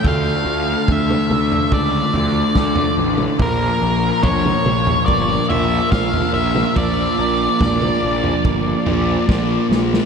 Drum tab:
SD |------------o---|------------o---|----o-------o-oo|
T2 |-----oo--------o|-----oo--------o|----oo----------|
FT |o---o--o--o--o--|o---o--o--o--o--|o---o--o--o-----|
BD |o---o---o---o---|o---o---o---o---|o---o---o---o---|